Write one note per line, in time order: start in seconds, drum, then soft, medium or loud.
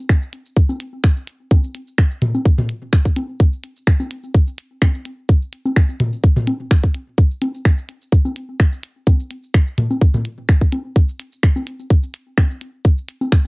0.09 finger snap medium
0.09 kick loud
0.09 shaker medium
0.22 shaker soft
0.33 closed hi-hat medium
0.46 shaker soft
0.57 kick loud
0.57 shaker medium
0.69 high conga soft
0.69 shaker soft
0.80 closed hi-hat loud
1.04 finger snap loud
1.04 kick loud
1.04 shaker medium
1.16 shaker soft
1.27 closed hi-hat loud
1.51 kick loud
1.51 high conga soft
1.51 shaker medium
1.64 shaker soft
1.75 closed hi-hat loud
1.87 shaker soft
1.98 finger snap loud
1.98 kick loud
1.98 shaker medium
2.11 shaker soft
2.22 closed hi-hat loud
2.22 mid tom medium
2.35 high conga soft
2.35 shaker soft
2.46 kick loud
2.46 shaker medium
2.58 mid tom medium
2.58 shaker soft
2.69 closed hi-hat loud
2.93 finger snap loud
2.93 kick loud
2.93 shaker medium
3.05 kick medium
3.05 shaker soft
3.16 closed hi-hat loud
3.16 high conga soft
3.40 kick loud
3.40 shaker medium
3.53 shaker soft
3.64 closed hi-hat loud
3.76 shaker soft
3.87 finger snap loud
3.87 kick loud
3.87 shaker medium
4.00 high conga soft
4.00 shaker soft
4.11 closed hi-hat loud
4.24 shaker soft
4.35 kick loud
4.35 shaker medium
4.47 shaker soft
4.58 closed hi-hat loud
4.82 finger snap loud
4.82 kick loud
4.82 high conga soft
4.82 shaker medium
4.94 shaker soft
5.05 closed hi-hat loud
5.29 kick loud
5.29 shaker medium
5.42 shaker soft
5.53 closed hi-hat medium
5.65 high conga soft
5.65 shaker soft
5.76 finger snap medium
5.76 kick loud
5.76 shaker medium
5.89 shaker soft
6.00 closed hi-hat loud
6.00 mid tom medium
6.13 shaker soft
6.24 kick loud
6.24 shaker medium
6.36 mid tom medium
6.36 shaker soft
6.47 closed hi-hat loud
6.47 high conga soft
6.71 finger snap loud
6.71 kick loud
6.71 shaker medium
6.83 kick medium
6.83 shaker soft
6.94 closed hi-hat loud
7.18 kick loud
7.18 shaker medium
7.31 shaker soft
7.42 closed hi-hat loud
7.42 high conga soft
7.54 shaker soft
7.65 finger snap medium
7.65 kick loud
7.65 shaker medium
7.78 shaker soft
7.89 closed hi-hat medium
8.02 shaker soft
8.12 kick loud
8.12 shaker medium
8.25 high conga soft
8.25 shaker soft
8.36 closed hi-hat loud
8.60 finger snap medium
8.60 kick loud
8.60 shaker medium
8.72 shaker soft
8.83 closed hi-hat loud
9.07 kick loud
9.07 high conga soft
9.07 shaker medium
9.20 shaker soft
9.31 closed hi-hat medium
9.43 shaker soft
9.54 finger snap medium
9.54 kick loud
9.54 shaker medium
9.67 shaker soft
9.78 closed hi-hat medium
9.78 mid tom medium
9.91 high conga soft
9.91 shaker soft
10.01 kick loud
10.01 shaker medium
10.14 mid tom medium
10.14 shaker soft
10.25 closed hi-hat medium
10.49 finger snap medium
10.49 kick loud
10.49 shaker medium
10.61 kick medium
10.61 shaker soft
10.72 closed hi-hat medium
10.72 high conga soft
10.96 kick loud
10.96 shaker medium
11.09 shaker soft
11.20 closed hi-hat medium
11.32 shaker soft
11.43 finger snap medium
11.43 kick loud
11.43 shaker medium
11.56 high conga soft
11.56 shaker soft
11.67 closed hi-hat medium
11.79 shaker soft
11.90 kick loud
11.90 shaker medium
12.03 shaker soft
12.14 closed hi-hat medium
12.38 finger snap loud
12.38 kick loud
12.38 high conga soft
12.38 shaker medium
12.50 shaker soft
12.61 closed hi-hat medium
12.85 kick loud
12.85 shaker medium
12.98 shaker soft
13.09 closed hi-hat medium
13.21 high conga soft
13.21 shaker soft
13.32 finger snap medium
13.32 kick loud
13.32 shaker medium